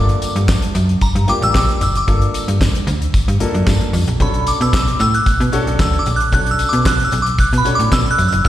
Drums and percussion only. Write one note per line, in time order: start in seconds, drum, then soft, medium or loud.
0.09 closed hi-hat medium
0.22 closed hi-hat medium
0.22 tambourine medium
0.36 closed hi-hat medium
0.48 kick loud
0.48 snare loud
0.48 clap medium
0.48 tambourine medium
0.62 closed hi-hat medium
0.75 closed hi-hat medium
0.75 tambourine soft
0.89 closed hi-hat soft
1.01 kick loud
1.01 closed hi-hat medium
1.01 tambourine soft
1.16 closed hi-hat medium
1.28 closed hi-hat medium
1.42 closed hi-hat medium
1.55 kick loud
1.55 snare medium
1.55 clap medium
1.55 tambourine medium
1.69 closed hi-hat soft
1.81 closed hi-hat medium
1.81 tambourine medium
1.95 closed hi-hat soft
2.08 kick medium
2.08 closed hi-hat medium
2.22 closed hi-hat soft
2.34 closed hi-hat medium
2.34 tambourine medium
2.48 closed hi-hat soft
2.61 kick loud
2.61 snare loud
2.61 clap medium
2.61 tambourine medium
2.75 closed hi-hat medium
2.87 closed hi-hat medium
2.87 tambourine soft
3.02 closed hi-hat medium
3.14 kick loud
3.14 closed hi-hat loud
3.14 tambourine soft
3.28 closed hi-hat medium
3.40 closed hi-hat medium
3.55 closed hi-hat medium
3.67 kick loud
3.67 snare medium
3.67 clap medium
3.67 tambourine medium
3.81 closed hi-hat soft
3.93 open hi-hat medium
3.93 tambourine medium
4.08 closed hi-hat medium
4.20 kick medium
4.20 closed hi-hat medium
4.34 closed hi-hat soft
4.47 closed hi-hat medium
4.47 tambourine medium
4.61 closed hi-hat medium
4.73 kick loud
4.73 snare loud
4.73 clap medium
4.73 tambourine medium
4.88 closed hi-hat medium
4.99 closed hi-hat medium
4.99 tambourine soft
5.14 closed hi-hat medium
5.26 kick loud
5.26 closed hi-hat loud
5.26 tambourine soft
5.41 closed hi-hat medium
5.52 closed hi-hat medium
5.52 tambourine soft
5.67 closed hi-hat soft
5.79 kick loud
5.79 snare medium
5.79 clap medium
5.79 tambourine medium
5.93 closed hi-hat soft
6.06 closed hi-hat medium
6.06 tambourine soft
6.20 closed hi-hat soft
6.32 kick medium
6.32 closed hi-hat medium
6.32 tambourine soft
6.46 closed hi-hat medium
6.59 closed hi-hat medium
6.59 tambourine medium
6.73 closed hi-hat medium
6.85 kick loud
6.85 snare loud
6.85 clap medium
6.85 tambourine medium
7.00 closed hi-hat medium
7.11 closed hi-hat medium
7.11 tambourine soft
7.26 closed hi-hat medium
7.38 kick loud
7.38 closed hi-hat medium
7.38 tambourine soft
7.53 closed hi-hat medium
7.64 closed hi-hat medium
7.64 tambourine soft
7.80 closed hi-hat soft
7.92 kick loud
7.92 snare medium
7.92 clap medium
7.92 tambourine medium
8.06 closed hi-hat soft
8.18 closed hi-hat medium
8.18 tambourine medium
8.32 closed hi-hat medium
8.44 kick loud
8.44 closed hi-hat medium
8.44 tambourine soft